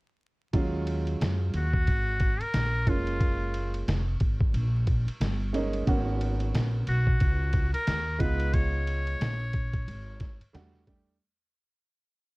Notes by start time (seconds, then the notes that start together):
0.53 D#2 F#3 G#3 C#4 F4, kick, ride
0.87 ride
1.07 ride
1.21 F#2, snare, hi-hat pedal, ride
1.54 D#2 F#4, ride
1.73 kick
1.87 G#1, kick, ride
2.20 kick, ride
2.40 A#4, muted upright bass stroke, ride
2.54 A#1, snare, hi-hat pedal, ride
2.87 F#1 G#3 A#3 C#4 F4, kick, ride
3.07 ride
3.21 kick, ride
3.54 ride
3.74 ride
3.88 F1, snare, hi-hat pedal, ride
4.20 G#1, kick, ride
4.41 kick
4.54 A#1, ride
4.87 kick, ride
5.07 muted upright bass stroke, ride
5.20 G1, snare, hi-hat pedal, ride
5.53 G#3 A#3 C#4 D#4, ride
5.73 ride
5.87 G#1 A#3 B3 C#4 F#4, kick, ride
6.21 ride
6.40 ride
6.54 A#1, snare, hi-hat pedal, ride
6.87 B1 F#4, ride
7.07 kick
7.20 C#2, kick, ride
7.53 kick, ride
7.73 A#4, muted upright bass stroke, ride
7.87 D#2, snare, hi-hat pedal, ride
8.19 C#2 G#3 B3 D#4 F4 B4, kick, ride
8.40 ride
8.54 C#5, kick, ride
8.87 ride
9.07 ride
9.21 A#1, snare, hi-hat pedal, ride
9.53 kick, ride
9.73 kick, ride
9.88 G#1, ride
10.20 kick, snare, ride
10.40 muted upright bass stroke, ride
10.53 E2 G3 A3 D4 F#4, snare, hi-hat pedal, ride
10.73 snare
10.87 G3 A3 D4 G4, kick, ride